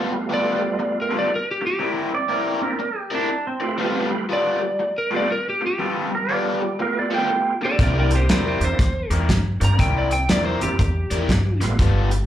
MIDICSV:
0, 0, Header, 1, 8, 480
1, 0, Start_track
1, 0, Tempo, 499584
1, 1729, Time_signature, 4, 2, 24, 8
1, 11779, End_track
2, 0, Start_track
2, 0, Title_t, "Lead electric guitar"
2, 0, Program_c, 0, 29
2, 323, Note_on_c, 0, 74, 85
2, 927, Note_off_c, 0, 74, 0
2, 977, Note_on_c, 0, 70, 57
2, 1109, Note_off_c, 0, 70, 0
2, 1140, Note_on_c, 0, 74, 68
2, 1271, Note_off_c, 0, 74, 0
2, 1303, Note_on_c, 0, 70, 69
2, 1432, Note_off_c, 0, 70, 0
2, 1454, Note_on_c, 0, 67, 76
2, 1587, Note_off_c, 0, 67, 0
2, 1601, Note_on_c, 0, 67, 87
2, 1839, Note_off_c, 0, 67, 0
2, 4161, Note_on_c, 0, 74, 96
2, 4765, Note_off_c, 0, 74, 0
2, 4785, Note_on_c, 0, 70, 69
2, 4931, Note_off_c, 0, 70, 0
2, 4961, Note_on_c, 0, 74, 78
2, 5099, Note_off_c, 0, 74, 0
2, 5111, Note_on_c, 0, 70, 81
2, 5254, Note_off_c, 0, 70, 0
2, 5280, Note_on_c, 0, 67, 74
2, 5419, Note_off_c, 0, 67, 0
2, 5443, Note_on_c, 0, 67, 76
2, 5678, Note_off_c, 0, 67, 0
2, 7348, Note_on_c, 0, 69, 66
2, 7355, Note_on_c, 0, 74, 78
2, 7497, Note_off_c, 0, 69, 0
2, 7497, Note_off_c, 0, 74, 0
2, 7506, Note_on_c, 0, 70, 62
2, 7520, Note_on_c, 0, 74, 69
2, 7646, Note_off_c, 0, 70, 0
2, 7659, Note_off_c, 0, 74, 0
2, 7674, Note_on_c, 0, 70, 66
2, 7679, Note_on_c, 0, 74, 58
2, 7811, Note_off_c, 0, 70, 0
2, 7817, Note_off_c, 0, 74, 0
2, 7833, Note_on_c, 0, 67, 63
2, 7840, Note_on_c, 0, 72, 62
2, 7970, Note_off_c, 0, 67, 0
2, 7976, Note_off_c, 0, 72, 0
2, 7981, Note_on_c, 0, 67, 74
2, 7987, Note_on_c, 0, 72, 81
2, 8123, Note_off_c, 0, 67, 0
2, 8133, Note_off_c, 0, 72, 0
2, 8147, Note_on_c, 0, 67, 64
2, 8150, Note_on_c, 0, 72, 55
2, 8288, Note_off_c, 0, 67, 0
2, 8293, Note_off_c, 0, 72, 0
2, 8308, Note_on_c, 0, 72, 83
2, 8764, Note_off_c, 0, 72, 0
2, 9267, Note_on_c, 0, 82, 70
2, 9413, Note_off_c, 0, 82, 0
2, 9413, Note_on_c, 0, 79, 79
2, 9566, Note_off_c, 0, 79, 0
2, 9589, Note_on_c, 0, 74, 68
2, 9728, Note_on_c, 0, 79, 90
2, 9735, Note_off_c, 0, 74, 0
2, 9884, Note_off_c, 0, 79, 0
2, 9899, Note_on_c, 0, 74, 82
2, 10041, Note_off_c, 0, 74, 0
2, 10045, Note_on_c, 0, 72, 68
2, 10202, Note_off_c, 0, 72, 0
2, 10213, Note_on_c, 0, 67, 80
2, 11144, Note_off_c, 0, 67, 0
2, 11779, End_track
3, 0, Start_track
3, 0, Title_t, "Electric slide guitar"
3, 0, Program_c, 1, 29
3, 2061, Note_on_c, 1, 74, 85
3, 2520, Note_off_c, 1, 74, 0
3, 2529, Note_on_c, 1, 70, 78
3, 2855, Note_off_c, 1, 70, 0
3, 2855, Note_on_c, 1, 67, 67
3, 3007, Note_off_c, 1, 67, 0
3, 3025, Note_on_c, 1, 62, 70
3, 3327, Note_off_c, 1, 62, 0
3, 3335, Note_on_c, 1, 60, 84
3, 3796, Note_off_c, 1, 60, 0
3, 5907, Note_on_c, 1, 70, 81
3, 6067, Note_off_c, 1, 70, 0
3, 6067, Note_on_c, 1, 74, 76
3, 6523, Note_off_c, 1, 74, 0
3, 6553, Note_on_c, 1, 70, 70
3, 6695, Note_off_c, 1, 70, 0
3, 6714, Note_on_c, 1, 74, 63
3, 6856, Note_off_c, 1, 74, 0
3, 6863, Note_on_c, 1, 79, 78
3, 7255, Note_off_c, 1, 79, 0
3, 11779, End_track
4, 0, Start_track
4, 0, Title_t, "Overdriven electric guitar"
4, 0, Program_c, 2, 29
4, 0, Note_on_c, 2, 55, 69
4, 0, Note_on_c, 2, 59, 74
4, 0, Note_on_c, 2, 65, 86
4, 0, Note_on_c, 2, 69, 76
4, 108, Note_off_c, 2, 69, 0
4, 110, Note_off_c, 2, 65, 0
4, 114, Note_off_c, 2, 55, 0
4, 116, Note_off_c, 2, 59, 0
4, 282, Note_on_c, 2, 55, 68
4, 290, Note_on_c, 2, 59, 73
4, 292, Note_on_c, 2, 65, 68
4, 295, Note_on_c, 2, 69, 77
4, 577, Note_off_c, 2, 69, 0
4, 585, Note_off_c, 2, 59, 0
4, 585, Note_off_c, 2, 65, 0
4, 590, Note_off_c, 2, 55, 0
4, 1063, Note_on_c, 2, 69, 91
4, 1068, Note_on_c, 2, 65, 77
4, 1073, Note_on_c, 2, 59, 75
4, 1078, Note_on_c, 2, 55, 64
4, 1233, Note_off_c, 2, 55, 0
4, 1236, Note_off_c, 2, 59, 0
4, 1237, Note_off_c, 2, 65, 0
4, 1239, Note_off_c, 2, 69, 0
4, 1722, Note_on_c, 2, 60, 72
4, 1728, Note_on_c, 2, 64, 84
4, 1729, Note_on_c, 2, 70, 75
4, 1735, Note_on_c, 2, 74, 81
4, 2014, Note_off_c, 2, 74, 0
4, 2019, Note_off_c, 2, 70, 0
4, 2023, Note_off_c, 2, 64, 0
4, 2029, Note_off_c, 2, 60, 0
4, 2196, Note_on_c, 2, 60, 69
4, 2200, Note_on_c, 2, 64, 70
4, 2205, Note_on_c, 2, 70, 79
4, 2208, Note_on_c, 2, 74, 72
4, 2492, Note_off_c, 2, 74, 0
4, 2496, Note_off_c, 2, 70, 0
4, 2501, Note_off_c, 2, 64, 0
4, 2505, Note_off_c, 2, 60, 0
4, 2983, Note_on_c, 2, 74, 80
4, 2987, Note_on_c, 2, 70, 79
4, 2992, Note_on_c, 2, 64, 78
4, 2993, Note_on_c, 2, 60, 73
4, 3147, Note_off_c, 2, 60, 0
4, 3149, Note_off_c, 2, 64, 0
4, 3151, Note_off_c, 2, 70, 0
4, 3154, Note_off_c, 2, 74, 0
4, 3632, Note_on_c, 2, 55, 73
4, 3640, Note_on_c, 2, 59, 81
4, 3641, Note_on_c, 2, 65, 89
4, 3647, Note_on_c, 2, 69, 85
4, 3933, Note_off_c, 2, 69, 0
4, 3935, Note_off_c, 2, 65, 0
4, 3940, Note_off_c, 2, 59, 0
4, 3943, Note_off_c, 2, 55, 0
4, 4124, Note_on_c, 2, 55, 70
4, 4126, Note_on_c, 2, 59, 81
4, 4129, Note_on_c, 2, 65, 83
4, 4136, Note_on_c, 2, 69, 83
4, 4419, Note_off_c, 2, 65, 0
4, 4419, Note_off_c, 2, 69, 0
4, 4423, Note_off_c, 2, 59, 0
4, 4429, Note_off_c, 2, 55, 0
4, 4907, Note_on_c, 2, 69, 89
4, 4912, Note_on_c, 2, 65, 72
4, 4917, Note_on_c, 2, 59, 74
4, 4920, Note_on_c, 2, 55, 63
4, 5077, Note_off_c, 2, 55, 0
4, 5080, Note_off_c, 2, 59, 0
4, 5084, Note_off_c, 2, 65, 0
4, 5085, Note_off_c, 2, 69, 0
4, 5560, Note_on_c, 2, 55, 77
4, 5565, Note_on_c, 2, 59, 79
4, 5567, Note_on_c, 2, 65, 77
4, 5571, Note_on_c, 2, 69, 79
4, 5857, Note_off_c, 2, 69, 0
4, 5862, Note_off_c, 2, 65, 0
4, 5863, Note_off_c, 2, 59, 0
4, 5867, Note_off_c, 2, 55, 0
4, 6043, Note_on_c, 2, 55, 70
4, 6050, Note_on_c, 2, 59, 73
4, 6055, Note_on_c, 2, 65, 73
4, 6056, Note_on_c, 2, 69, 81
4, 6340, Note_off_c, 2, 69, 0
4, 6344, Note_off_c, 2, 65, 0
4, 6348, Note_off_c, 2, 55, 0
4, 6348, Note_off_c, 2, 59, 0
4, 6828, Note_on_c, 2, 69, 72
4, 6833, Note_on_c, 2, 65, 73
4, 6835, Note_on_c, 2, 59, 73
4, 6837, Note_on_c, 2, 55, 67
4, 6999, Note_off_c, 2, 55, 0
4, 7002, Note_off_c, 2, 59, 0
4, 7003, Note_off_c, 2, 65, 0
4, 7006, Note_off_c, 2, 69, 0
4, 7487, Note_on_c, 2, 60, 75
4, 7492, Note_on_c, 2, 64, 74
4, 7495, Note_on_c, 2, 70, 85
4, 7498, Note_on_c, 2, 74, 89
4, 7784, Note_off_c, 2, 74, 0
4, 7789, Note_off_c, 2, 70, 0
4, 7791, Note_off_c, 2, 60, 0
4, 7793, Note_off_c, 2, 64, 0
4, 7970, Note_on_c, 2, 60, 69
4, 7972, Note_on_c, 2, 64, 69
4, 7978, Note_on_c, 2, 70, 75
4, 7982, Note_on_c, 2, 74, 87
4, 8267, Note_off_c, 2, 74, 0
4, 8270, Note_off_c, 2, 70, 0
4, 8272, Note_off_c, 2, 60, 0
4, 8273, Note_off_c, 2, 64, 0
4, 8751, Note_on_c, 2, 74, 80
4, 8753, Note_on_c, 2, 70, 88
4, 8757, Note_on_c, 2, 64, 75
4, 8763, Note_on_c, 2, 60, 71
4, 8915, Note_off_c, 2, 60, 0
4, 8918, Note_off_c, 2, 64, 0
4, 8919, Note_off_c, 2, 70, 0
4, 8920, Note_off_c, 2, 74, 0
4, 9405, Note_on_c, 2, 60, 75
4, 9412, Note_on_c, 2, 70, 77
4, 9413, Note_on_c, 2, 64, 75
4, 9419, Note_on_c, 2, 74, 86
4, 9702, Note_off_c, 2, 74, 0
4, 9704, Note_off_c, 2, 70, 0
4, 9709, Note_off_c, 2, 64, 0
4, 9710, Note_off_c, 2, 60, 0
4, 9888, Note_on_c, 2, 60, 68
4, 9894, Note_on_c, 2, 64, 75
4, 9897, Note_on_c, 2, 70, 81
4, 9902, Note_on_c, 2, 74, 83
4, 10180, Note_off_c, 2, 74, 0
4, 10186, Note_off_c, 2, 70, 0
4, 10188, Note_off_c, 2, 64, 0
4, 10192, Note_off_c, 2, 60, 0
4, 10672, Note_on_c, 2, 74, 90
4, 10680, Note_on_c, 2, 70, 73
4, 10684, Note_on_c, 2, 64, 69
4, 10686, Note_on_c, 2, 60, 66
4, 10845, Note_off_c, 2, 60, 0
4, 10847, Note_off_c, 2, 64, 0
4, 10850, Note_off_c, 2, 74, 0
4, 10853, Note_off_c, 2, 70, 0
4, 11330, Note_on_c, 2, 55, 77
4, 11333, Note_on_c, 2, 59, 72
4, 11336, Note_on_c, 2, 65, 85
4, 11340, Note_on_c, 2, 69, 78
4, 11631, Note_off_c, 2, 69, 0
4, 11633, Note_off_c, 2, 65, 0
4, 11634, Note_off_c, 2, 55, 0
4, 11636, Note_off_c, 2, 59, 0
4, 11779, End_track
5, 0, Start_track
5, 0, Title_t, "Tonewheel organ"
5, 0, Program_c, 3, 16
5, 0, Note_on_c, 3, 55, 53
5, 0, Note_on_c, 3, 57, 52
5, 0, Note_on_c, 3, 59, 46
5, 0, Note_on_c, 3, 65, 57
5, 1139, Note_off_c, 3, 55, 0
5, 1140, Note_off_c, 3, 57, 0
5, 1145, Note_off_c, 3, 59, 0
5, 1148, Note_off_c, 3, 65, 0
5, 2513, Note_on_c, 3, 58, 66
5, 2520, Note_on_c, 3, 60, 56
5, 2521, Note_on_c, 3, 62, 55
5, 2525, Note_on_c, 3, 64, 71
5, 2671, Note_off_c, 3, 58, 0
5, 2674, Note_off_c, 3, 60, 0
5, 2675, Note_off_c, 3, 62, 0
5, 2677, Note_off_c, 3, 64, 0
5, 3471, Note_on_c, 3, 57, 59
5, 3475, Note_on_c, 3, 71, 51
5, 3479, Note_on_c, 3, 65, 54
5, 3481, Note_on_c, 3, 67, 68
5, 4092, Note_off_c, 3, 57, 0
5, 4094, Note_off_c, 3, 71, 0
5, 4096, Note_off_c, 3, 65, 0
5, 4097, Note_off_c, 3, 67, 0
5, 4910, Note_on_c, 3, 57, 71
5, 4914, Note_on_c, 3, 59, 65
5, 4918, Note_on_c, 3, 65, 62
5, 4924, Note_on_c, 3, 67, 78
5, 5069, Note_off_c, 3, 57, 0
5, 5071, Note_off_c, 3, 59, 0
5, 5073, Note_off_c, 3, 65, 0
5, 5076, Note_off_c, 3, 67, 0
5, 6523, Note_on_c, 3, 57, 51
5, 6525, Note_on_c, 3, 59, 51
5, 6530, Note_on_c, 3, 65, 49
5, 6537, Note_on_c, 3, 67, 56
5, 7248, Note_off_c, 3, 57, 0
5, 7249, Note_off_c, 3, 59, 0
5, 7251, Note_off_c, 3, 65, 0
5, 7255, Note_off_c, 3, 67, 0
5, 7308, Note_on_c, 3, 58, 57
5, 7312, Note_on_c, 3, 60, 54
5, 7322, Note_on_c, 3, 67, 67
5, 7323, Note_on_c, 3, 62, 53
5, 7931, Note_off_c, 3, 58, 0
5, 7933, Note_off_c, 3, 60, 0
5, 7938, Note_off_c, 3, 62, 0
5, 7938, Note_off_c, 3, 67, 0
5, 8280, Note_on_c, 3, 60, 54
5, 8283, Note_on_c, 3, 58, 60
5, 8286, Note_on_c, 3, 62, 57
5, 8292, Note_on_c, 3, 64, 70
5, 8434, Note_off_c, 3, 60, 0
5, 8436, Note_off_c, 3, 58, 0
5, 8437, Note_off_c, 3, 62, 0
5, 8441, Note_off_c, 3, 64, 0
5, 9225, Note_on_c, 3, 58, 56
5, 9231, Note_on_c, 3, 60, 53
5, 9235, Note_on_c, 3, 62, 52
5, 9239, Note_on_c, 3, 67, 66
5, 9387, Note_off_c, 3, 58, 0
5, 9390, Note_off_c, 3, 60, 0
5, 9392, Note_off_c, 3, 62, 0
5, 9395, Note_off_c, 3, 67, 0
5, 10185, Note_on_c, 3, 58, 58
5, 10187, Note_on_c, 3, 60, 51
5, 10194, Note_on_c, 3, 62, 49
5, 10194, Note_on_c, 3, 64, 62
5, 10348, Note_off_c, 3, 58, 0
5, 10349, Note_off_c, 3, 60, 0
5, 10352, Note_off_c, 3, 62, 0
5, 10353, Note_off_c, 3, 64, 0
5, 11147, Note_on_c, 3, 55, 65
5, 11158, Note_on_c, 3, 57, 64
5, 11158, Note_on_c, 3, 59, 60
5, 11165, Note_on_c, 3, 65, 81
5, 11309, Note_off_c, 3, 55, 0
5, 11315, Note_off_c, 3, 57, 0
5, 11315, Note_off_c, 3, 59, 0
5, 11318, Note_off_c, 3, 65, 0
5, 11779, End_track
6, 0, Start_track
6, 0, Title_t, "Upright bass"
6, 0, Program_c, 4, 32
6, 7483, Note_on_c, 4, 36, 79
6, 7945, Note_off_c, 4, 36, 0
6, 7968, Note_on_c, 4, 40, 83
6, 8258, Note_off_c, 4, 40, 0
6, 8266, Note_on_c, 4, 40, 82
6, 8438, Note_off_c, 4, 40, 0
6, 8444, Note_on_c, 4, 40, 74
6, 8737, Note_off_c, 4, 40, 0
6, 8745, Note_on_c, 4, 40, 80
6, 8917, Note_off_c, 4, 40, 0
6, 8927, Note_on_c, 4, 43, 75
6, 9218, Note_off_c, 4, 43, 0
6, 9236, Note_on_c, 4, 43, 72
6, 9403, Note_off_c, 4, 43, 0
6, 9409, Note_on_c, 4, 36, 79
6, 9869, Note_off_c, 4, 36, 0
6, 9886, Note_on_c, 4, 40, 86
6, 10178, Note_off_c, 4, 40, 0
6, 10198, Note_on_c, 4, 40, 84
6, 10365, Note_off_c, 4, 40, 0
6, 10372, Note_on_c, 4, 40, 85
6, 10661, Note_off_c, 4, 40, 0
6, 10676, Note_on_c, 4, 40, 82
6, 10844, Note_off_c, 4, 40, 0
6, 10849, Note_on_c, 4, 43, 80
6, 11140, Note_off_c, 4, 43, 0
6, 11157, Note_on_c, 4, 33, 76
6, 11324, Note_off_c, 4, 33, 0
6, 11330, Note_on_c, 4, 31, 80
6, 11779, Note_off_c, 4, 31, 0
6, 11779, End_track
7, 0, Start_track
7, 0, Title_t, "Muted overdriven electric guitar strokes"
7, 120, Note_on_c, 9, 29, 46
7, 216, Note_off_c, 9, 29, 0
7, 589, Note_on_c, 9, 29, 40
7, 685, Note_off_c, 9, 29, 0
7, 761, Note_on_c, 9, 29, 44
7, 857, Note_off_c, 9, 29, 0
7, 1245, Note_on_c, 9, 29, 41
7, 1341, Note_off_c, 9, 29, 0
7, 1549, Note_on_c, 9, 29, 44
7, 1645, Note_off_c, 9, 29, 0
7, 2025, Note_on_c, 9, 29, 39
7, 2121, Note_off_c, 9, 29, 0
7, 2503, Note_on_c, 9, 29, 49
7, 2599, Note_off_c, 9, 29, 0
7, 2682, Note_on_c, 9, 29, 47
7, 2778, Note_off_c, 9, 29, 0
7, 3159, Note_on_c, 9, 29, 39
7, 3255, Note_off_c, 9, 29, 0
7, 3461, Note_on_c, 9, 29, 47
7, 3557, Note_off_c, 9, 29, 0
7, 3945, Note_on_c, 9, 29, 43
7, 4041, Note_off_c, 9, 29, 0
7, 4430, Note_on_c, 9, 29, 40
7, 4527, Note_off_c, 9, 29, 0
7, 4606, Note_on_c, 9, 29, 49
7, 4702, Note_off_c, 9, 29, 0
7, 5089, Note_on_c, 9, 29, 41
7, 5185, Note_off_c, 9, 29, 0
7, 5390, Note_on_c, 9, 29, 50
7, 5486, Note_off_c, 9, 29, 0
7, 5868, Note_on_c, 9, 29, 42
7, 5965, Note_off_c, 9, 29, 0
7, 6352, Note_on_c, 9, 29, 45
7, 6448, Note_off_c, 9, 29, 0
7, 6528, Note_on_c, 9, 29, 40
7, 6624, Note_off_c, 9, 29, 0
7, 7011, Note_on_c, 9, 29, 44
7, 7107, Note_off_c, 9, 29, 0
7, 7316, Note_on_c, 9, 29, 47
7, 7412, Note_off_c, 9, 29, 0
7, 7796, Note_on_c, 9, 29, 37
7, 7892, Note_off_c, 9, 29, 0
7, 8279, Note_on_c, 9, 29, 39
7, 8375, Note_off_c, 9, 29, 0
7, 8447, Note_on_c, 9, 29, 45
7, 8543, Note_off_c, 9, 29, 0
7, 8927, Note_on_c, 9, 29, 40
7, 9023, Note_off_c, 9, 29, 0
7, 9230, Note_on_c, 9, 29, 50
7, 9326, Note_off_c, 9, 29, 0
7, 9714, Note_on_c, 9, 29, 44
7, 9810, Note_off_c, 9, 29, 0
7, 10192, Note_on_c, 9, 29, 49
7, 10288, Note_off_c, 9, 29, 0
7, 10369, Note_on_c, 9, 29, 45
7, 10465, Note_off_c, 9, 29, 0
7, 10857, Note_on_c, 9, 29, 44
7, 10953, Note_off_c, 9, 29, 0
7, 11152, Note_on_c, 9, 29, 47
7, 11248, Note_off_c, 9, 29, 0
7, 11642, Note_on_c, 9, 29, 47
7, 11738, Note_off_c, 9, 29, 0
7, 11779, End_track
8, 0, Start_track
8, 0, Title_t, "Drums"
8, 7484, Note_on_c, 9, 36, 97
8, 7485, Note_on_c, 9, 42, 76
8, 7581, Note_off_c, 9, 36, 0
8, 7581, Note_off_c, 9, 42, 0
8, 7788, Note_on_c, 9, 42, 52
8, 7884, Note_off_c, 9, 42, 0
8, 7967, Note_on_c, 9, 42, 79
8, 7972, Note_on_c, 9, 38, 107
8, 8063, Note_off_c, 9, 42, 0
8, 8068, Note_off_c, 9, 38, 0
8, 8273, Note_on_c, 9, 42, 53
8, 8369, Note_off_c, 9, 42, 0
8, 8446, Note_on_c, 9, 36, 96
8, 8448, Note_on_c, 9, 42, 71
8, 8453, Note_on_c, 9, 38, 27
8, 8542, Note_off_c, 9, 36, 0
8, 8544, Note_off_c, 9, 42, 0
8, 8549, Note_off_c, 9, 38, 0
8, 8750, Note_on_c, 9, 42, 56
8, 8846, Note_off_c, 9, 42, 0
8, 8926, Note_on_c, 9, 36, 73
8, 8929, Note_on_c, 9, 42, 81
8, 8934, Note_on_c, 9, 38, 103
8, 9022, Note_off_c, 9, 36, 0
8, 9025, Note_off_c, 9, 42, 0
8, 9030, Note_off_c, 9, 38, 0
8, 9235, Note_on_c, 9, 42, 63
8, 9331, Note_off_c, 9, 42, 0
8, 9407, Note_on_c, 9, 36, 90
8, 9411, Note_on_c, 9, 42, 80
8, 9503, Note_off_c, 9, 36, 0
8, 9507, Note_off_c, 9, 42, 0
8, 9713, Note_on_c, 9, 42, 57
8, 9809, Note_off_c, 9, 42, 0
8, 9887, Note_on_c, 9, 42, 84
8, 9891, Note_on_c, 9, 38, 109
8, 9983, Note_off_c, 9, 42, 0
8, 9988, Note_off_c, 9, 38, 0
8, 10196, Note_on_c, 9, 42, 57
8, 10292, Note_off_c, 9, 42, 0
8, 10368, Note_on_c, 9, 36, 93
8, 10373, Note_on_c, 9, 42, 76
8, 10464, Note_off_c, 9, 36, 0
8, 10470, Note_off_c, 9, 42, 0
8, 10672, Note_on_c, 9, 42, 59
8, 10768, Note_off_c, 9, 42, 0
8, 10849, Note_on_c, 9, 36, 70
8, 10855, Note_on_c, 9, 42, 73
8, 10860, Note_on_c, 9, 38, 100
8, 10945, Note_off_c, 9, 36, 0
8, 10951, Note_off_c, 9, 42, 0
8, 10956, Note_off_c, 9, 38, 0
8, 11158, Note_on_c, 9, 42, 54
8, 11162, Note_on_c, 9, 38, 30
8, 11254, Note_off_c, 9, 42, 0
8, 11258, Note_off_c, 9, 38, 0
8, 11328, Note_on_c, 9, 42, 73
8, 11329, Note_on_c, 9, 36, 102
8, 11424, Note_off_c, 9, 42, 0
8, 11425, Note_off_c, 9, 36, 0
8, 11636, Note_on_c, 9, 42, 55
8, 11732, Note_off_c, 9, 42, 0
8, 11779, End_track
0, 0, End_of_file